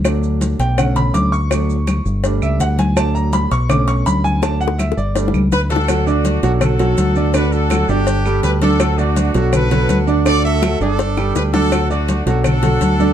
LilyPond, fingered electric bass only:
\new Staff \with { instrumentName = "Fingered electric bass" } { \clef bass \time 4/4 \key b \minor \tempo 4 = 165 d,4. b,,4. d,4~ | d,4. g,,4 cis,8 d,4~ | d,4. b,,4. d,4~ | d,4. g,,4 cis,8 d,4~ |
d,4. b,,4. d,4~ | d,4. g,,4. d,4~ | d,4. b,,4. d,4~ | d,4. g,,4. d,4~ |
d,4. b,,4. d,4 | }